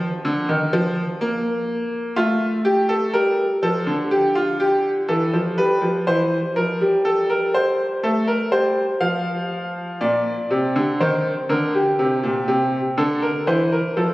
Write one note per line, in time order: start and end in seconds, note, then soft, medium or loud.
0.25 0.48 D3 medium
0.49 0.72 D#3 medium
0.73 1.03 F3 medium
1.21 2.14 A#3 medium
2.16 3.11 A3 medium
2.16 2.47 F4 medium
2.65 2.88 G4 medium
2.89 3.13 A4 medium
3.14 3.44 G3 medium
3.14 3.44 A#4 medium
3.63 3.86 F3 medium
3.63 3.93 A4 medium
3.87 5.05 D3 medium
4.11 4.35 G4 medium
4.35 4.59 F4 medium
4.60 4.90 G4 medium
5.08 5.32 E3 medium
5.08 5.39 A4 medium
5.33 5.57 F3 medium
5.58 5.82 G3 medium
5.58 5.88 B4 medium
5.81 6.06 F3 medium
6.07 6.38 E3 medium
6.07 6.38 C5 medium
6.56 6.80 F3 medium
6.56 6.87 A#4 medium
6.81 7.99 G3 medium
7.05 7.29 A4 medium
7.30 7.54 A#4 medium
7.54 7.85 C5 medium
8.03 8.34 A3 medium
8.03 8.27 A4 medium
8.28 8.52 A#4 medium
8.52 8.83 G3 medium
8.52 8.83 C5 medium
9.00 9.98 F3 medium
9.00 9.98 F5 medium
10.01 10.32 A#2 medium
10.01 10.98 D5 medium
10.50 10.75 C3 medium
10.76 11.00 D3 medium
11.00 11.31 D#3 medium
11.00 11.31 C5 medium
11.49 11.80 D3 medium
11.49 11.74 A#4 medium
11.74 12.93 G4 medium
11.99 12.23 C3 medium
12.23 12.47 A#2 medium
12.48 12.78 C3 medium
12.98 13.28 D3 medium
12.98 13.21 A4 medium
13.22 13.46 A#4 medium
13.47 13.77 E3 medium
13.47 13.71 C5 medium
13.72 13.95 A#4 medium
13.97 14.14 F3 medium
13.97 14.14 A4 medium